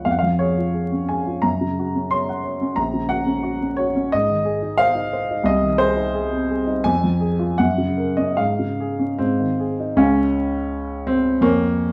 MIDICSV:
0, 0, Header, 1, 2, 480
1, 0, Start_track
1, 0, Key_signature, -5, "major"
1, 0, Tempo, 687285
1, 46, Time_signature, 2, 2, 24, 8
1, 1485, Tempo, 668151
1, 4365, Tempo, 723764
1, 5325, Tempo, 802139
1, 6765, Tempo, 720288
1, 7725, Tempo, 785340
1, 8026, End_track
2, 0, Start_track
2, 0, Title_t, "Grand piano"
2, 0, Program_c, 0, 0
2, 0, Control_c, 0, 64, 127
2, 35, Note_on_c, 0, 77, 68
2, 40, Note_on_c, 0, 41, 44
2, 60, Control_c, 0, 64, 0
2, 77, Note_on_c, 0, 78, 57
2, 88, Note_off_c, 0, 77, 0
2, 131, Note_on_c, 0, 77, 71
2, 133, Note_off_c, 0, 78, 0
2, 158, Note_on_c, 0, 53, 29
2, 168, Control_c, 0, 64, 127
2, 272, Note_on_c, 0, 73, 70
2, 281, Note_on_c, 0, 68, 38
2, 284, Note_off_c, 0, 77, 0
2, 357, Note_off_c, 0, 53, 0
2, 403, Note_on_c, 0, 65, 31
2, 477, Note_off_c, 0, 68, 0
2, 516, Note_on_c, 0, 68, 33
2, 597, Note_off_c, 0, 65, 0
2, 643, Note_on_c, 0, 61, 33
2, 712, Note_off_c, 0, 68, 0
2, 757, Note_off_c, 0, 73, 0
2, 759, Note_on_c, 0, 80, 63
2, 766, Note_on_c, 0, 68, 33
2, 836, Note_off_c, 0, 61, 0
2, 882, Note_on_c, 0, 65, 36
2, 959, Note_off_c, 0, 68, 0
2, 977, Note_off_c, 0, 41, 0
2, 990, Note_on_c, 0, 82, 75
2, 999, Note_on_c, 0, 42, 43
2, 1004, Note_off_c, 0, 80, 0
2, 1005, Note_off_c, 0, 65, 0
2, 1021, Control_c, 0, 64, 0
2, 1124, Note_on_c, 0, 49, 31
2, 1149, Control_c, 0, 64, 127
2, 1252, Note_on_c, 0, 66, 39
2, 1319, Note_off_c, 0, 49, 0
2, 1366, Note_on_c, 0, 61, 37
2, 1440, Note_off_c, 0, 66, 0
2, 1472, Note_on_c, 0, 84, 83
2, 1476, Note_off_c, 0, 82, 0
2, 1476, Note_on_c, 0, 73, 46
2, 1555, Note_off_c, 0, 61, 0
2, 1603, Note_on_c, 0, 78, 40
2, 1670, Note_off_c, 0, 73, 0
2, 1710, Note_on_c, 0, 73, 41
2, 1791, Note_off_c, 0, 78, 0
2, 1834, Note_on_c, 0, 61, 41
2, 1903, Note_off_c, 0, 73, 0
2, 1923, Note_off_c, 0, 42, 0
2, 1939, Note_on_c, 0, 82, 77
2, 1948, Note_on_c, 0, 34, 46
2, 1949, Note_off_c, 0, 84, 0
2, 1954, Note_off_c, 0, 61, 0
2, 1968, Control_c, 0, 64, 0
2, 2067, Note_on_c, 0, 49, 30
2, 2090, Control_c, 0, 64, 127
2, 2176, Note_on_c, 0, 78, 87
2, 2183, Note_off_c, 0, 82, 0
2, 2186, Note_on_c, 0, 66, 42
2, 2260, Note_off_c, 0, 49, 0
2, 2305, Note_on_c, 0, 61, 37
2, 2380, Note_off_c, 0, 66, 0
2, 2421, Note_on_c, 0, 66, 46
2, 2502, Note_off_c, 0, 61, 0
2, 2554, Note_on_c, 0, 61, 36
2, 2622, Note_off_c, 0, 66, 0
2, 2663, Note_on_c, 0, 73, 72
2, 2669, Note_off_c, 0, 78, 0
2, 2676, Note_on_c, 0, 66, 45
2, 2750, Note_off_c, 0, 61, 0
2, 2798, Note_on_c, 0, 61, 44
2, 2873, Note_off_c, 0, 66, 0
2, 2889, Note_off_c, 0, 34, 0
2, 2915, Note_off_c, 0, 73, 0
2, 2920, Note_on_c, 0, 75, 91
2, 2921, Note_off_c, 0, 61, 0
2, 2930, Note_on_c, 0, 44, 51
2, 2934, Control_c, 0, 64, 0
2, 3044, Note_on_c, 0, 51, 31
2, 3059, Control_c, 0, 64, 127
2, 3154, Note_on_c, 0, 68, 53
2, 3235, Note_off_c, 0, 51, 0
2, 3278, Note_on_c, 0, 63, 44
2, 3349, Note_off_c, 0, 68, 0
2, 3387, Note_on_c, 0, 77, 98
2, 3398, Note_on_c, 0, 72, 53
2, 3400, Note_off_c, 0, 75, 0
2, 3470, Note_off_c, 0, 63, 0
2, 3513, Note_on_c, 0, 63, 45
2, 3590, Note_off_c, 0, 72, 0
2, 3645, Note_on_c, 0, 72, 43
2, 3707, Note_off_c, 0, 63, 0
2, 3770, Note_on_c, 0, 63, 44
2, 3833, Note_off_c, 0, 72, 0
2, 3853, Note_off_c, 0, 44, 0
2, 3864, Note_on_c, 0, 36, 62
2, 3871, Note_off_c, 0, 77, 0
2, 3878, Note_on_c, 0, 75, 88
2, 3883, Note_off_c, 0, 63, 0
2, 3891, Control_c, 0, 64, 0
2, 3999, Note_on_c, 0, 51, 35
2, 4012, Control_c, 0, 64, 127
2, 4112, Note_on_c, 0, 72, 91
2, 4117, Note_off_c, 0, 75, 0
2, 4117, Note_on_c, 0, 68, 54
2, 4192, Note_off_c, 0, 51, 0
2, 4240, Note_on_c, 0, 63, 43
2, 4315, Note_off_c, 0, 68, 0
2, 4371, Note_on_c, 0, 68, 52
2, 4436, Note_off_c, 0, 63, 0
2, 4487, Note_on_c, 0, 60, 40
2, 4557, Note_off_c, 0, 68, 0
2, 4600, Note_off_c, 0, 72, 0
2, 4606, Note_on_c, 0, 68, 43
2, 4675, Note_off_c, 0, 60, 0
2, 4721, Note_on_c, 0, 63, 50
2, 4794, Note_off_c, 0, 68, 0
2, 4806, Note_off_c, 0, 36, 0
2, 4833, Note_on_c, 0, 80, 104
2, 4839, Note_off_c, 0, 63, 0
2, 4843, Note_on_c, 0, 41, 63
2, 4850, Control_c, 0, 64, 0
2, 4955, Control_c, 0, 64, 127
2, 4962, Note_on_c, 0, 53, 35
2, 5076, Note_on_c, 0, 68, 52
2, 5153, Note_off_c, 0, 53, 0
2, 5199, Note_on_c, 0, 65, 47
2, 5274, Note_off_c, 0, 68, 0
2, 5313, Note_off_c, 0, 41, 0
2, 5322, Note_off_c, 0, 80, 0
2, 5323, Note_on_c, 0, 78, 83
2, 5325, Note_off_c, 0, 65, 0
2, 5332, Note_on_c, 0, 42, 57
2, 5339, Control_c, 0, 64, 0
2, 5443, Note_on_c, 0, 49, 36
2, 5456, Control_c, 0, 64, 127
2, 5559, Note_on_c, 0, 70, 41
2, 5632, Note_off_c, 0, 49, 0
2, 5675, Note_on_c, 0, 75, 71
2, 5678, Note_off_c, 0, 78, 0
2, 5680, Note_on_c, 0, 61, 40
2, 5752, Note_off_c, 0, 70, 0
2, 5791, Note_off_c, 0, 42, 0
2, 5795, Note_on_c, 0, 77, 68
2, 5800, Note_off_c, 0, 75, 0
2, 5802, Note_off_c, 0, 61, 0
2, 5803, Note_on_c, 0, 44, 49
2, 5816, Control_c, 0, 64, 0
2, 5928, Note_on_c, 0, 49, 34
2, 5940, Control_c, 0, 64, 127
2, 6055, Note_on_c, 0, 68, 49
2, 6122, Note_off_c, 0, 49, 0
2, 6169, Note_on_c, 0, 61, 37
2, 6245, Note_off_c, 0, 68, 0
2, 6275, Note_off_c, 0, 44, 0
2, 6284, Note_on_c, 0, 60, 74
2, 6289, Note_off_c, 0, 61, 0
2, 6289, Note_on_c, 0, 44, 48
2, 6301, Control_c, 0, 64, 0
2, 6407, Note_on_c, 0, 51, 35
2, 6429, Control_c, 0, 64, 127
2, 6527, Note_off_c, 0, 77, 0
2, 6530, Note_on_c, 0, 68, 40
2, 6603, Note_off_c, 0, 51, 0
2, 6650, Note_on_c, 0, 63, 43
2, 6720, Note_off_c, 0, 68, 0
2, 6749, Note_on_c, 0, 37, 59
2, 6751, Note_off_c, 0, 44, 0
2, 6752, Note_on_c, 0, 61, 95
2, 6754, Note_on_c, 0, 77, 48
2, 6754, Note_on_c, 0, 80, 50
2, 6755, Note_on_c, 0, 73, 48
2, 6763, Note_off_c, 0, 60, 0
2, 6765, Note_off_c, 0, 63, 0
2, 6776, Control_c, 0, 64, 0
2, 6897, Control_c, 0, 64, 127
2, 7480, Note_off_c, 0, 61, 0
2, 7484, Note_on_c, 0, 60, 90
2, 7689, Note_off_c, 0, 37, 0
2, 7692, Note_off_c, 0, 73, 0
2, 7692, Note_off_c, 0, 77, 0
2, 7692, Note_off_c, 0, 80, 0
2, 7713, Note_on_c, 0, 41, 60
2, 7717, Note_on_c, 0, 58, 98
2, 7718, Note_on_c, 0, 73, 50
2, 7720, Note_on_c, 0, 80, 49
2, 7722, Note_on_c, 0, 85, 49
2, 7723, Note_off_c, 0, 60, 0
2, 7736, Control_c, 0, 64, 0
2, 7837, Control_c, 0, 64, 127
2, 8026, Note_off_c, 0, 41, 0
2, 8026, Note_off_c, 0, 58, 0
2, 8026, Note_off_c, 0, 73, 0
2, 8026, Note_off_c, 0, 80, 0
2, 8026, Note_off_c, 0, 85, 0
2, 8026, End_track
0, 0, End_of_file